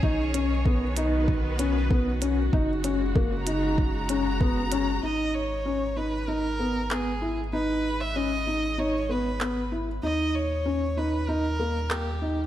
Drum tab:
HH |-x-x-x-x|-x-x-x-x|--------|--------|
CP |--------|--------|------x-|------x-|
BD |o-o-o-o-|o-o-o-o-|--------|--------|

HH |--------|
CP |------x-|
BD |--------|